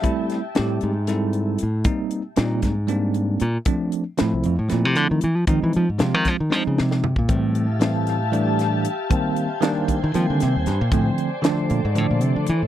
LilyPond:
<<
  \new Staff \with { instrumentName = "Ambient pad" } { \time 7/8 \key a \phrygian \tempo 4 = 116 << { r2. r8 | r2. r8 | r2. r8 | r2. r8 |
<g' f'' a''>2.~ <g' f'' a''>8 | <g'' aes''>2.~ <g'' aes''>8 | <a' d''>2.~ <a' d''>8 | } \\ { r2. r8 | r2. r8 | r2. r8 | r2. r8 |
e''2.~ e''8 | c''2.~ c''8~ | c''2.~ c''8 | } >> }
  \new Staff \with { instrumentName = "Tine electric piano" } { \time 7/8 \key a \phrygian <g a c' e'>8 r8 <g a c' g'>8 r8 <g c' e' a'>4 r8 | <g bes c' ees'>8 r8 <g bes c' ees'>8 r8 <g bes c' d'>4 r8 | <f a c' d'>8 r8 <f a c' e'>8 r8 <f a c' e'>4 r8 | <f aes c' ees'>8 r8 <f aes c' f'>8 r8 <f aes c' ees'>4 r8 |
<e g a c'>8 r8 <e g a c'>8 r8 <e g a d'>4 r8 | <ees g bes c'>8 r8 <ees g bes d'>8 r8 <ees g bes c'>4 r8 | <d f a c'>8 r8 <d f a d'>8 r8 <d f a d'>4 r8 | }
  \new Staff \with { instrumentName = "Fingered electric bass" } { \clef bass \time 7/8 \key a \phrygian r4 a,8 aes,4. a,8 | r4 bes,8 aes,4. bes,8 | r4 a,16 c,16 f,16 a,16 bes,16 c16 d16 ees16 e16 f16 | ees16 e16 f16 aes,16 c16 ees16 f16 ees16 f16 des16 c8. bes,16 |
a,2. r8 | r4. r16 ees16 f16 d16 c16 ees,16 g,16 bes,16 | a,8 r4 bes,16 aes,16 a,16 bes,16 c16 d16 e16 a,16 | }
  \new DrumStaff \with { instrumentName = "Drums" } \drummode { \time 7/8 <hh bd>8 <hh sn>8 <hh sn>8 hh8 <hh sn>8 hh8 hh8 | <hh bd>8 hh8 <hh sn>8 <hh bd sn>8 hh8 hh8 hh8 | <hh bd>8 hh8 <hh sn>8 hh8 <hh sn>8 hh8 hh8 | <hh bd>8 hh8 <hh sn>8 <hh bd sn>8 sn8 sn16 sn16 tomfh16 bd16 |
<hh bd>8 hh8 <hh sn>8 <hh sn>8 hh8 <hh sn>8 hh8 | <hh bd>8 hh8 <hh sn>8 <hh bd>8 <hh sn>8 <hh sn>8 <hh sn>8 | <hh bd>8 hh8 <hh sn>8 hh8 hh8 hh8 hh8 | }
>>